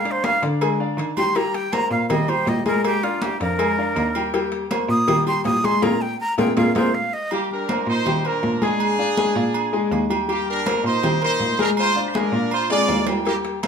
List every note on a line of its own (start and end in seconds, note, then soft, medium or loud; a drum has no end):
0.00 0.37 A#2 loud
0.00 0.13 F5 medium
0.05 0.35 D4 medium
0.05 0.36 D5 medium
0.05 0.36 F5 medium
0.05 cowbell medium
0.05 high conga soft
0.11 0.26 C5 medium
0.24 0.42 F5 loud
0.24 cowbell medium
0.24 high conga loud
0.24 low agogo medium
0.43 0.95 D3 medium
0.43 0.58 D4 medium
0.43 0.58 D5 medium
0.43 0.58 F5 medium
0.43 cowbell medium
0.43 high conga soft
0.61 0.76 G#3 medium
0.61 0.77 G#4 medium
0.61 0.77 G#5 medium
0.61 cowbell loud
0.61 high conga soft
0.61 low agogo loud
0.80 1.10 D4 medium
0.80 1.11 D5 medium
0.80 1.11 F5 medium
0.80 high conga soft
0.97 1.85 D#3 medium
0.97 cowbell medium
0.97 high conga soft
0.97 low agogo medium
1.17 1.33 G3 medium
1.17 1.33 G4 loud
1.17 1.33 G5 medium
1.17 1.37 C6 loud
1.17 high conga medium
1.17 low agogo loud
1.35 1.66 G3 medium
1.35 1.66 G4 medium
1.35 1.66 G5 medium
1.35 1.56 A#5 medium
1.35 cowbell loud
1.35 high conga soft
1.35 low agogo medium
1.54 1.75 G5 medium
1.54 cowbell medium
1.54 high conga soft
1.72 2.03 A#3 medium
1.72 2.03 A#4 medium
1.72 2.03 C5 medium
1.72 1.91 A#5 loud
1.72 cowbell medium
1.72 high conga loud
1.72 low agogo loud
1.91 2.43 A#2 loud
1.91 2.09 F5 medium
2.10 2.25 G3 medium
2.10 2.25 G4 medium
2.10 2.31 D#5 medium
2.10 2.25 G5 medium
2.10 cowbell loud
2.10 high conga soft
2.10 low conga medium
2.10 low agogo loud
2.28 2.59 G3 medium
2.28 2.59 G4 medium
2.28 2.50 C5 loud
2.28 2.59 G5 medium
2.28 high conga soft
2.28 low agogo medium
2.47 3.34 A#2 medium
2.47 2.66 D#5 medium
2.47 cowbell medium
2.47 high conga medium
2.47 low timbale medium
2.66 2.97 G#3 loud
2.66 2.97 G#4 medium
2.66 2.85 A#4 medium
2.66 2.97 G#5 medium
2.66 high conga medium
2.66 low agogo medium
2.84 3.05 G4 medium
2.84 cowbell loud
2.84 high conga soft
2.84 low agogo loud
3.03 3.34 D4 medium
3.03 3.24 F4 medium
3.03 3.34 D5 medium
3.03 3.34 F5 medium
3.03 cowbell medium
3.03 high conga soft
3.22 3.40 G4 medium
3.22 cowbell medium
3.22 high conga loud
3.22 low agogo medium
3.40 3.93 F2 loud
3.40 3.56 D4 medium
3.40 4.49 A#4 loud
3.40 3.56 D5 medium
3.40 3.57 F5 medium
3.40 cowbell medium
3.40 high conga soft
3.58 3.74 G#3 medium
3.58 3.74 G#4 medium
3.58 3.74 G#5 medium
3.58 cowbell loud
3.58 high conga soft
3.58 low agogo loud
3.77 4.09 D4 medium
3.77 4.09 D5 medium
3.77 4.09 F5 medium
3.77 high conga soft
3.96 4.84 D#2 loud
3.96 cowbell medium
3.96 high conga soft
3.96 low agogo medium
4.15 4.31 G3 medium
4.15 4.31 G4 medium
4.15 4.31 G5 loud
4.15 low agogo loud
4.33 4.64 G3 medium
4.33 4.65 G4 medium
4.33 4.65 G5 medium
4.33 cowbell loud
4.33 high conga soft
4.33 low agogo medium
4.52 cowbell medium
4.52 high conga soft
4.71 5.02 A#3 medium
4.71 5.02 A#4 medium
4.71 5.02 C5 medium
4.71 cowbell medium
4.71 high conga loud
4.71 low agogo loud
4.89 5.41 A#2 loud
4.89 5.26 D#6 loud
5.08 5.23 G3 medium
5.08 5.23 G4 medium
5.08 5.23 G5 medium
5.08 cowbell loud
5.08 high conga soft
5.08 low conga medium
5.08 low agogo loud
5.26 5.57 G3 loud
5.26 5.57 G4 medium
5.26 5.57 G5 medium
5.26 5.44 C6 medium
5.26 high conga soft
5.26 low agogo medium
5.45 5.80 A#2 medium
5.45 5.66 D#6 medium
5.45 cowbell medium
5.45 high conga medium
5.45 low timbale medium
5.64 5.79 G#3 medium
5.64 5.79 G#4 medium
5.64 5.79 G#5 medium
5.64 5.84 C6 loud
5.64 high conga medium
5.64 low agogo medium
5.82 5.96 A#2 loud
5.82 5.94 F4 loud
5.82 5.94 G#4 loud
5.82 5.94 A#4 loud
5.82 6.03 A#5 loud
5.82 cowbell loud
5.82 high conga loud
5.82 high timbale loud
6.01 6.19 G5 loud
6.20 6.38 A#5 loud
6.38 6.52 A#2 loud
6.38 6.50 F4 loud
6.38 6.50 G#4 loud
6.38 6.50 A#4 loud
6.38 6.56 G5 medium
6.38 cowbell loud
6.38 high conga loud
6.38 high timbale loud
6.57 6.71 A#2 loud
6.57 6.69 F4 loud
6.57 6.69 G#4 loud
6.57 6.69 A#4 loud
6.57 6.75 F5 medium
6.57 cowbell medium
6.57 high conga loud
6.57 high timbale loud
6.75 6.89 A#2 medium
6.75 6.88 F4 loud
6.75 6.88 G#4 loud
6.75 6.88 A#4 loud
6.75 6.96 C5 medium
6.75 cowbell loud
6.75 high conga loud
6.75 high timbale loud
6.95 7.15 F5 medium
7.13 7.31 D#5 loud
7.31 7.62 G3 medium
7.31 7.50 A#3 medium
7.31 7.62 G4 medium
7.31 7.49 G4 medium
7.31 7.62 G5 medium
7.31 high conga soft
7.31 low agogo medium
7.51 7.86 D4 medium
7.51 7.85 A#4 medium
7.51 high conga soft
7.69 7.99 A#3 medium
7.69 8.00 A#4 medium
7.69 8.00 C5 medium
7.69 high conga loud
7.69 low agogo loud
7.87 8.39 A#2 loud
7.87 8.23 D#4 medium
7.87 8.22 C5 loud
8.05 8.21 G3 medium
8.05 8.21 G4 medium
8.05 8.21 G5 medium
8.05 high conga soft
8.05 low conga medium
8.05 low agogo loud
8.24 8.55 A#3 medium
8.24 8.61 D4 medium
8.24 8.55 A#4 medium
8.24 8.62 A#4 medium
8.24 8.55 C5 medium
8.24 high conga soft
8.24 low agogo medium
8.43 9.30 A#2 loud
8.43 high conga medium
8.62 8.92 G#3 loud
8.62 10.07 D4 medium
8.62 8.92 G#4 loud
8.62 10.07 G#4 loud
8.62 8.92 G#5 medium
8.62 high conga medium
8.62 low agogo medium
8.80 high conga soft
8.80 low agogo loud
8.99 9.14 D4 medium
8.99 9.14 D5 medium
8.99 9.14 F5 medium
8.99 high conga soft
9.17 9.32 G#3 medium
9.17 9.33 G#4 medium
9.17 9.33 G#5 medium
9.17 high conga loud
9.17 low agogo medium
9.35 9.87 A#2 loud
9.35 9.66 D4 medium
9.35 9.66 D5 medium
9.35 9.67 F5 medium
9.35 high conga soft
9.54 high conga soft
9.54 low agogo loud
9.73 10.03 G#3 loud
9.73 10.03 G#4 medium
9.73 10.04 G#5 medium
9.73 high conga soft
9.92 10.79 D#2 loud
9.92 high conga soft
9.92 low agogo loud
10.10 10.25 G3 medium
10.10 10.25 G4 medium
10.10 10.25 G5 medium
10.10 low agogo loud
10.28 10.59 G3 medium
10.28 10.47 A#3 medium
10.28 10.59 G4 medium
10.28 10.46 G4 loud
10.28 10.60 G5 medium
10.28 high conga soft
10.28 low agogo loud
10.47 10.83 D4 medium
10.47 10.83 A#4 loud
10.47 high conga soft
10.66 10.96 A#3 medium
10.66 10.97 A#4 medium
10.66 10.97 C5 medium
10.66 high conga loud
10.66 low agogo loud
10.84 11.36 A#2 loud
10.84 11.20 D#4 medium
10.84 11.20 C5 loud
11.03 11.19 G3 medium
11.03 11.18 G4 medium
11.03 11.19 G5 medium
11.03 high conga soft
11.03 low conga medium
11.03 low agogo loud
11.22 11.52 A#3 medium
11.22 11.57 D#4 medium
11.22 11.52 A#4 medium
11.22 11.52 C5 medium
11.22 11.57 C5 loud
11.22 high conga soft
11.22 low agogo medium
11.40 12.27 A#2 medium
11.40 high conga medium
11.59 11.89 G#3 medium
11.59 11.69 D4 medium
11.59 11.90 G#4 loud
11.59 11.68 A#4 loud
11.59 11.90 G#5 medium
11.59 high conga medium
11.59 low agogo medium
11.77 12.07 F4 medium
11.77 12.06 C5 loud
11.77 high conga soft
11.77 low agogo loud
11.96 12.11 D4 medium
11.96 12.11 D5 medium
11.96 12.11 F5 medium
11.96 high conga soft
12.09 12.15 C5 medium
12.14 12.30 G#3 medium
12.14 12.53 D4 medium
12.14 12.30 G#4 medium
12.14 12.53 A#4 loud
12.14 12.30 G#5 medium
12.14 high conga loud
12.14 low agogo medium
12.33 12.85 A#2 loud
12.33 12.64 D4 medium
12.33 12.64 D5 medium
12.33 12.64 F5 medium
12.33 high conga soft
12.51 12.70 F4 medium
12.51 12.69 C5 loud
12.51 high conga soft
12.51 low agogo loud
12.70 13.01 G#3 medium
12.70 13.06 F4 medium
12.70 13.01 G#4 medium
12.70 13.05 D5 loud
12.70 13.02 G#5 loud
12.70 high conga soft
12.70 high timbale medium
12.89 13.67 D#2 loud
12.89 high conga soft
12.89 low timbale medium
12.89 low agogo medium
13.07 13.23 G3 medium
13.07 13.23 G4 medium
13.07 13.24 G5 loud
13.07 low timbale loud
13.07 low agogo loud
13.25 13.57 G3 medium
13.25 13.36 A#3 medium
13.25 13.35 G4 medium
13.25 13.57 G4 medium
13.25 13.57 G5 loud
13.25 cowbell loud
13.25 high conga soft
13.25 low agogo medium
13.45 cowbell medium
13.45 high conga soft
13.63 13.67 A#3 medium
13.63 13.67 A#4 medium
13.63 13.67 C5 medium
13.63 cowbell medium
13.63 high conga loud
13.63 low agogo loud